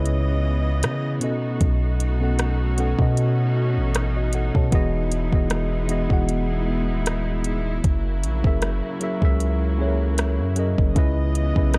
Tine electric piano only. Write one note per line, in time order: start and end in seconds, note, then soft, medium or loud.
0.00 1.24 C#3 loud
0.00 1.22 C#4 loud
0.00 1.24 E4 medium
0.00 1.24 B4 medium
0.00 1.24 C#5 medium
0.00 1.24 D#5 loud
1.20 2.11 B2 medium
1.20 2.12 B3 medium
1.20 2.12 C#4 medium
1.20 2.13 A4 medium
1.20 2.13 D#5 medium
2.20 2.73 B2 medium
2.20 2.73 B3 medium
2.20 2.74 C#4 medium
2.20 2.74 A4 medium
2.20 2.74 F#5 medium
2.77 2.96 B2 medium
2.77 2.97 B3 medium
2.77 2.97 C#4 medium
2.77 2.98 A4 medium
2.77 2.98 F#5 medium
2.98 3.51 B2 medium
2.98 3.51 B3 medium
2.98 3.52 C#4 medium
2.98 3.52 A4 medium
2.98 3.53 D#5 medium
4.16 4.33 F#4 medium
4.16 4.33 D#5 medium
4.34 4.54 A4 medium
4.34 4.54 F#5 medium
4.55 4.92 C#5 medium
4.55 4.92 A5 medium
4.71 5.26 E3 loud
4.71 5.27 B3 medium
4.71 5.27 F#4 medium
4.71 5.28 G#4 loud
4.71 5.28 D#5 loud
5.31 5.84 E3 medium
5.31 5.85 B3 medium
5.31 5.85 F#4 medium
5.31 5.86 G#4 medium
5.31 5.86 D#5 medium
5.88 6.08 E3 medium
5.88 6.08 B3 medium
5.88 6.09 F#4 medium
5.88 6.09 G#4 medium
5.88 6.10 D#5 medium
6.09 7.51 E3 medium
6.09 7.52 B3 medium
6.09 7.52 F#4 medium
6.09 7.53 G#4 medium
6.09 7.53 F#5 medium
8.43 8.96 F#3 medium
8.43 8.97 C#4 medium
8.43 8.97 G#4 medium
8.43 8.97 A#4 medium
8.43 8.98 E5 medium
9.00 9.20 F#3 medium
9.00 9.20 C#4 medium
9.00 9.21 G#4 medium
9.00 9.21 A#4 medium
9.00 9.22 E5 medium
9.21 9.74 F#3 medium
9.21 9.74 C#4 medium
9.21 9.75 G#4 medium
9.21 9.75 A#4 medium
9.21 9.76 E5 medium
9.78 10.50 F#3 medium
9.78 10.51 C#4 medium
9.78 10.51 G#4 medium
9.78 9.87 A4 medium
9.78 10.52 C#5 medium
9.87 10.55 A#4 medium
10.56 10.92 F#3 medium
10.56 10.93 C#4 medium
10.56 10.93 G#4 medium
10.56 10.94 A#4 medium
10.56 10.94 D#5 medium
10.95 11.50 C#3 loud
10.95 11.51 C#4 loud
10.95 11.51 E4 medium
10.95 11.51 B4 loud
10.95 11.52 D#5 loud
11.55 11.78 C#3 medium
11.55 11.78 C#4 medium
11.55 11.78 E4 medium
11.55 11.78 B4 medium
11.55 11.78 D#5 medium